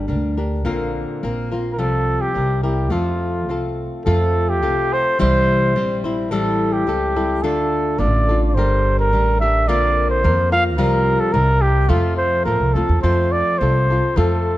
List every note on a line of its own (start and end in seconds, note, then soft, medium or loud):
0.00 0.64 D3 medium
0.08 0.66 D2 medium
0.08 0.38 G3 soft
0.08 0.38 D4 soft
0.08 0.37 G4 soft
0.08 0.36 A#4 medium
0.37 0.65 D4 soft
0.37 0.65 G4 soft
0.37 0.65 A#4 soft
0.65 1.03 A#1 medium
0.65 1.22 A#2 medium
0.65 1.22 D3 medium
0.65 1.22 A#3 medium
0.65 1.23 C4 medium
0.65 1.22 F4 medium
0.65 1.23 A#4 medium
1.23 1.79 A#1 medium
1.23 1.52 A#3 medium
1.23 1.52 C4 soft
1.23 1.51 F4 soft
1.23 1.50 A#4 medium
1.52 1.78 A#3 soft
1.52 1.78 C4 soft
1.52 1.78 F4 soft
1.52 1.79 A#4 soft
1.73 1.81 A#4 medium
1.78 2.16 C2 medium
1.78 2.35 C3 medium
1.78 2.35 F3 medium
1.78 2.33 G3 medium
1.78 2.34 C4 medium
1.78 2.35 F4 medium
1.78 2.23 A4 loud
2.21 2.63 G4 medium
2.34 2.92 C2 medium
2.34 2.64 G3 soft
2.34 2.63 C4 soft
2.34 2.63 E4 soft
2.34 2.62 A#4 soft
2.63 2.90 G3 soft
2.63 2.89 C4 soft
2.63 2.91 E4 soft
2.63 2.94 G4 medium
2.63 2.91 A#4 soft
2.90 3.49 F2 medium
2.90 3.48 F3 medium
2.90 3.48 A3 medium
2.90 3.49 C4 medium
2.90 3.49 F4 medium
2.90 3.79 F4 medium
2.90 3.49 A4 medium
3.49 3.87 C2 medium
3.49 4.05 A3 soft
3.49 4.06 C4 soft
3.49 4.05 F4 soft
3.49 4.06 A4 soft
4.06 4.63 F2 medium
4.06 4.63 F3 medium
4.06 4.61 A3 medium
4.06 4.62 C4 medium
4.06 4.62 F4 medium
4.06 4.51 A4 medium
4.06 4.62 A4 medium
4.49 4.95 G4 medium
4.62 5.00 C2 medium
4.62 5.19 A3 medium
4.62 5.19 C4 medium
4.62 5.19 F4 medium
4.62 5.19 A4 medium
4.93 5.21 C5 loud
5.19 5.77 C2 medium
5.19 5.76 C3 medium
5.19 5.75 E3 medium
5.19 5.75 G3 medium
5.19 5.75 C4 medium
5.19 5.76 E4 medium
5.19 5.76 C5 medium
5.19 6.01 C5 loud
5.76 6.32 A#1 medium
5.76 6.04 G3 medium
5.76 6.05 C4 medium
5.76 6.04 E4 medium
5.76 6.03 C5 medium
6.04 6.31 G3 soft
6.04 6.30 C4 soft
6.04 6.31 E4 medium
6.04 6.31 C5 medium
6.31 6.87 A1 loud
6.31 6.87 A2 medium
6.31 6.87 E3 medium
6.31 6.86 G3 medium
6.31 6.87 C4 medium
6.31 6.87 E4 medium
6.31 6.74 A4 medium
6.31 6.88 A4 medium
6.73 7.44 G4 loud
6.87 7.43 C#2 loud
6.87 7.16 G3 medium
6.87 7.15 C4 medium
6.87 7.15 E4 medium
6.87 7.15 A4 medium
7.16 7.43 G3 soft
7.16 7.43 C4 soft
7.16 7.43 E4 medium
7.16 7.43 A4 medium
7.43 8.00 D2 medium
7.43 9.68 D3 medium
7.43 7.98 A3 medium
7.43 7.99 D4 medium
7.43 7.98 F4 medium
7.43 8.01 A4 medium
7.43 7.99 A4 medium
7.98 8.56 A1 medium
7.98 8.28 A3 soft
7.98 8.28 D4 soft
7.98 8.28 F4 medium
7.98 8.28 A4 medium
7.98 8.42 D5 medium
8.29 8.56 D4 soft
8.29 8.57 F4 soft
8.29 8.56 A4 soft
8.49 8.56 D5 medium
8.55 9.12 G1 medium
8.55 9.11 G3 medium
8.55 9.12 D4 medium
8.55 9.13 G4 medium
8.55 9.14 A#4 medium
8.55 8.98 C5 medium
8.99 9.38 A#4 medium
9.12 9.68 A1 medium
9.12 9.41 G3 medium
9.12 9.41 D4 soft
9.12 9.42 G4 medium
9.12 9.41 A#4 soft
9.40 9.69 D4 soft
9.40 9.69 G4 soft
9.40 9.68 A#4 soft
9.40 9.70 E5 medium
9.68 10.26 A#1 medium
9.68 10.24 A#2 medium
9.68 10.24 D3 medium
9.68 10.23 A#3 medium
9.68 10.24 C4 medium
9.68 10.23 F4 medium
9.68 10.24 A#4 medium
9.68 10.09 D5 loud
10.10 10.49 C5 medium
10.24 10.78 F2 loud
10.24 10.52 A#3 soft
10.24 10.52 C4 medium
10.24 10.51 F4 medium
10.24 10.51 A#4 medium
10.52 10.78 A#3 soft
10.52 10.77 C4 soft
10.52 10.77 F4 medium
10.52 10.78 A#4 soft
10.52 10.64 F5 loud
10.78 11.14 C2 medium
10.78 11.34 C3 medium
10.78 11.34 F3 medium
10.78 11.32 G3 medium
10.78 11.34 C4 medium
10.78 11.34 F4 medium
10.78 11.21 A#4 loud
10.78 11.34 A#4 medium
11.20 11.34 A4 loud
11.33 11.91 C2 loud
11.33 11.88 G3 medium
11.33 11.88 C4 medium
11.33 11.89 E4 medium
11.33 11.63 A#4 loud
11.33 11.89 A#4 medium
11.61 11.90 G4 loud
11.89 12.45 F2 medium
11.89 13.03 F3 medium
11.89 12.45 A3 medium
11.89 12.45 C4 medium
11.89 12.17 F4 medium
11.89 12.46 F4 medium
11.89 12.47 A4 medium
12.17 12.44 C5 medium
12.45 12.59 A1 medium
12.45 12.76 A3 soft
12.45 12.76 C4 soft
12.45 12.76 F4 medium
12.45 12.75 A4 medium
12.45 12.75 A#4 medium
12.60 12.74 C2 medium
12.74 12.88 D2 medium
12.74 13.03 C4 soft
12.74 13.03 F4 soft
12.74 13.01 A4 medium
12.74 13.03 A4 medium
12.89 13.02 E2 medium
13.02 13.41 F2 medium
13.02 13.61 F3 medium
13.02 13.59 A3 medium
13.02 13.61 C4 medium
13.02 13.61 F4 medium
13.02 13.61 A4 medium
13.02 13.33 C5 medium
13.32 13.60 D5 medium
13.59 13.98 C2 medium
13.59 13.90 A3 soft
13.59 13.91 C4 soft
13.59 13.91 F4 medium
13.59 13.89 A4 soft
13.59 14.19 C5 medium
13.90 14.17 C4 soft
13.90 14.16 F4 soft
13.90 14.16 A4 soft
14.16 14.54 F2 medium
14.16 14.58 F3 medium
14.16 14.58 A3 medium
14.16 14.58 C4 medium
14.16 14.58 F4 medium
14.16 14.58 A4 medium